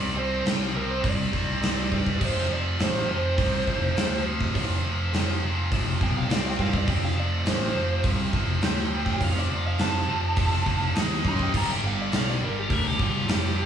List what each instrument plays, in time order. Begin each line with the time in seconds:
Already playing: picked electric bass C2, distorted electric guitar C3 G3 C4, lead electric guitar D5
0.14 picked electric bass C2, distorted electric guitar C3 G3 C4, lead electric guitar C5
0.44 picked electric bass C2, distorted electric guitar C3 G3 C4, snare, open hi-hat
0.74 picked electric bass C2, distorted electric guitar C3 G3 C4, lead electric guitar A#4
0.91 lead electric guitar C5
1.02 picked electric bass C2, distorted electric guitar C3 G3 C4, lead electric guitar D5, kick, open hi-hat
1.32 picked electric bass C2, distorted electric guitar C3 G3 C4, kick
1.61 picked electric bass C2, distorted electric guitar C3 G3 C4, snare, open hi-hat
1.90 picked electric bass G2, distorted electric guitar C3 G3 C4, kick
1.94 lead electric guitar D5
2.06 kick
2.20 picked electric bass F1, distorted electric guitar F2 C3 F3, kick, crash
2.24 lead electric guitar C5
2.48 picked electric bass F1, distorted electric guitar F2 C3 F3
2.54 lead electric guitar D5
2.78 picked electric bass A1, distorted electric guitar F2 C3 F3, snare, open hi-hat
2.83 lead electric guitar C5
3.07 picked electric bass F1, distorted electric guitar F2 C3 F3
3.11 lead electric guitar C5
3.37 picked electric bass C2, distorted electric guitar F2 C3 F3, kick, open hi-hat
3.67 picked electric bass F1, distorted electric guitar F2 C3 F3, kick
3.95 picked electric bass D2, distorted electric guitar F2 C3 F3, snare, open hi-hat
4.24 distorted electric guitar F2 C3 F3
4.41 kick
4.54 picked electric bass F1, distorted electric guitar F2 C3 F3, kick, open hi-hat
4.84 picked electric bass F1, distorted electric guitar F2 C3 F3
5.13 picked electric bass F1, distorted electric guitar F2 C3 F3, snare, open hi-hat
5.42 picked electric bass F1, distorted electric guitar F2 C3 F3
5.71 picked electric bass F1, distorted electric guitar F2 C3 F3, kick, open hi-hat
6.00 picked electric bass B1, distorted electric guitar F2 C3 F3, lead electric guitar G5, kick
6.18 lead electric guitar F5
6.28 picked electric bass C2, distorted electric guitar C3 G3 C4, snare, open hi-hat
6.32 lead electric guitar D5
6.47 lead electric guitar G5
6.57 picked electric bass G2, distorted electric guitar C3 G3 C4, kick
6.61 lead electric guitar F5
6.73 kick
6.78 lead electric guitar D5
6.86 picked electric bass F1, distorted electric guitar F2 C3 F3, lead electric guitar G5, kick, open hi-hat
7.04 lead electric guitar F5
7.16 picked electric bass F1, distorted electric guitar F2 C3 F3, lead electric guitar D5
7.44 picked electric bass A1, distorted electric guitar F2 C3 F3, lead electric guitar C5, snare, open hi-hat
7.75 picked electric bass F1, distorted electric guitar F2 C3 F3
8.03 picked electric bass C2, distorted electric guitar F2 C3 F3, kick, open hi-hat
8.33 picked electric bass F1, distorted electric guitar F2 C3 F3, kick
8.62 picked electric bass D2, distorted electric guitar F2 C3 F3, lead electric guitar G5, snare, open hi-hat
8.92 distorted electric guitar F2 C3 F3
9.06 kick
9.21 picked electric bass F1, distorted electric guitar F2 C3 F3, lead electric guitar F5, kick, open hi-hat
9.39 lead electric guitar D5
9.50 picked electric bass F1, distorted electric guitar F2 C3 F3
9.67 lead electric guitar F5
9.78 picked electric bass F1, distorted electric guitar F2 C3 F3, lead electric guitar A5, snare, open hi-hat
10.07 picked electric bass F1, distorted electric guitar F2 C3 F3
10.36 picked electric bass F1, distorted electric guitar F2 C3 F3, kick, open hi-hat
10.66 picked electric bass F1, distorted electric guitar F2 C3 F3, kick
10.94 picked electric bass D#2, distorted electric guitar D#3 A#3 D#4, snare, open hi-hat
11.24 picked electric bass F#2, distorted electric guitar D#3 A#3 D#4, kick
11.28 lead electric guitar C6
11.39 lead electric guitar G5, kick
11.53 picked electric bass G1, distorted electric guitar G2 D3 G3, lead electric guitar A#5, kick, crash
11.71 lead electric guitar G5
11.82 picked electric bass G1, distorted electric guitar G2 D3 G3
11.87 lead electric guitar F5
12.01 lead electric guitar D5
12.11 picked electric bass B1, distorted electric guitar G2 D3 G3, snare, open hi-hat
12.16 lead electric guitar F5
12.30 lead electric guitar D5
12.40 picked electric bass G1, distorted electric guitar G2 D3 G3
12.44 lead electric guitar A#4
12.59 lead electric guitar G4
12.68 picked electric bass D2, distorted electric guitar G2 D3 G3, kick, open hi-hat
12.73 lead electric guitar A#4
12.87 lead electric guitar G4
12.97 picked electric bass G1, distorted electric guitar G2 D3 G3, kick
13.03 lead electric guitar F4
13.27 picked electric bass F1, distorted electric guitar G2 D3 G3, snare, open hi-hat
13.31 lead electric guitar G4
13.56 distorted electric guitar G2 D3 G3